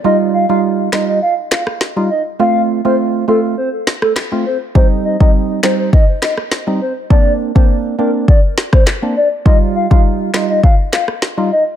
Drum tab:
CP |------x---x-----|------------x---|------x---x-----|------------x---|
SD |------o---oro---|----------oro---|------o---oro---|----------oro---|
BD |----------------|----------------|o--o----o-------|o--o----o--o----|

CP |------x---x-----|
SD |------o---oro---|
BD |o--o----o-------|